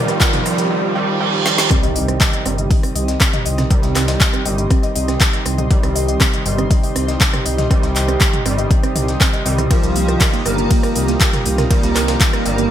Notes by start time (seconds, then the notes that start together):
Already playing: C3 D#3 F3 G3 C4 F4 G4 F5, riser
0.08 A#4, cross-stick, closed hi-hat
0.20 D#3 F3 G3 F4 A#4, kick, clap, closed hi-hat
0.33 A#4, closed hi-hat, mid tom
0.45 D#3 F3 G3 F4 A#4, cross-stick, closed hi-hat, open hi-hat
0.58 A#4, closed hi-hat
0.70 D#3 F3 G3, reverse cymbal
0.95 D#3 F3 G3
1.21 D#3 F3 G3
1.46 D#3 F3 G3, snare
1.58 snare
1.70 C3 D#3 G3 C4 G4 D#5 C6 D#6, kick, cross-stick, closed hi-hat, impact
1.83 C2 D#5, closed hi-hat
1.96 C2 D#5, closed hi-hat, open hi-hat
2.08 C4, cross-stick, closed hi-hat
2.21 D#5, kick, snare, clap, closed hi-hat
2.33 D#5, closed hi-hat
2.45 G1 C3 D#3 G3 C4, cross-stick, closed hi-hat, open hi-hat
2.58 D#5, closed hi-hat
2.71 D#5, kick, closed hi-hat, open hi-hat
2.83 C4, cross-stick, closed hi-hat, open hi-hat
2.96 C2 D#5, closed hi-hat, open hi-hat
3.08 D#5, snare, closed hi-hat
3.20 C4, kick, cross-stick, snare, clap, closed hi-hat
3.33 D#5, snare, closed hi-hat, mid tom
3.46 C2 D#5, closed hi-hat, open hi-hat
3.58 C4, cross-stick, snare, closed hi-hat, mid tom
3.70 C3 D#3 G3 D#5, kick, closed hi-hat
3.83 C2 D#5, snare, closed hi-hat
3.95 C2 C4, cross-stick, snare, clap, closed hi-hat, open hi-hat
4.08 D#5, snare, closed hi-hat
4.20 D#5, kick, snare, clap, closed hi-hat
4.33 C4, cross-stick, closed hi-hat
4.45 G1 C3 D#3 G3 D#5, closed hi-hat, open hi-hat
4.58 D#5, closed hi-hat
4.70 C4, kick, cross-stick, closed hi-hat
4.83 D#5, closed hi-hat
4.96 C2 D#5, closed hi-hat, open hi-hat
5.08 C4, cross-stick, snare, closed hi-hat
5.21 D#5, kick, snare, clap, closed hi-hat
5.33 D#5, snare, closed hi-hat
5.46 C2 C4, cross-stick, closed hi-hat, open hi-hat
5.58 D#5, closed hi-hat, mid tom
5.71 C3 D#3 G3 D#5, kick, closed hi-hat
5.83 C2 C4, cross-stick, closed hi-hat
5.96 C2 D#5, closed hi-hat, open hi-hat
6.08 D#5, closed hi-hat
6.21 C4, kick, cross-stick, snare, clap, closed hi-hat
6.33 D#5, closed hi-hat
6.46 G1 C3 D#3 G3 D#5, closed hi-hat, open hi-hat
6.58 C4, cross-stick, closed hi-hat
6.71 D#5, kick, closed hi-hat, open hi-hat
6.83 D#5, closed hi-hat, open hi-hat
6.96 C2 C4, cross-stick, closed hi-hat, open hi-hat
7.08 D#5, snare, closed hi-hat
7.21 kick, snare, clap, closed hi-hat
7.33 C4, cross-stick, snare, closed hi-hat, mid tom
7.46 C2 D#5, closed hi-hat, open hi-hat
7.58 D#5, snare, closed hi-hat, mid tom
7.71 C3 D#3 G3 C4, kick, cross-stick, closed hi-hat
7.83 C2 D#5, snare, closed hi-hat
7.96 C2 D#5, clap, closed hi-hat, open hi-hat
8.08 C4, cross-stick, closed hi-hat
8.21 kick, snare, clap, closed hi-hat
8.33 D#5, closed hi-hat, mid tom
8.46 G1 C3 D#3 G3 C4, cross-stick, closed hi-hat, open hi-hat
8.58 D#5, closed hi-hat
8.71 kick, closed hi-hat
8.83 C4, cross-stick, closed hi-hat
8.96 C2 D#5, closed hi-hat, mid tom, open hi-hat
9.08 D#5, snare, closed hi-hat
9.21 C4, kick, cross-stick, snare, clap, closed hi-hat
9.33 D#5, snare, closed hi-hat
9.46 C2 C3 D#3 G3 D#5, closed hi-hat, open hi-hat
9.58 C4, cross-stick, closed hi-hat, mid tom
9.71 D#3 F3 G3 F4 A#4 F5 A#5, kick, cross-stick, closed hi-hat, ride
9.83 C2 A#4, closed hi-hat
9.96 C2 A#3, closed hi-hat, open hi-hat
10.08 A#4, cross-stick, closed hi-hat
10.21 A#4, kick, snare, clap, closed hi-hat, ride
10.33 A#3, closed hi-hat
10.46 G1 D#3 F3 G3 A#3 A#4, cross-stick, closed hi-hat, open hi-hat
10.58 A#4, closed hi-hat
10.71 A#3, kick, closed hi-hat, open hi-hat, ride
10.83 A#4, cross-stick, closed hi-hat, open hi-hat
10.96 C2 A#4, closed hi-hat, open hi-hat
11.08 A#3, snare, closed hi-hat
11.21 A#4, kick, cross-stick, snare, clap, closed hi-hat, ride
11.33 A#4, snare, closed hi-hat, mid tom
11.45 C2 A#3, closed hi-hat, open hi-hat
11.58 A#4, cross-stick, snare, closed hi-hat, mid tom
11.71 D#3 F3 G3 A#3 A#4, kick, closed hi-hat, ride
11.83 C2 A#3, snare, closed hi-hat
11.95 C2 A#4, cross-stick, snare, clap, closed hi-hat, open hi-hat
12.08 A#4, snare, closed hi-hat
12.20 A#3 A#4, kick, snare, clap, closed hi-hat, ride
12.33 A#4, cross-stick, closed hi-hat
12.46 G1 D#3 F3 G3 A#4, closed hi-hat, open hi-hat
12.58 A#3, closed hi-hat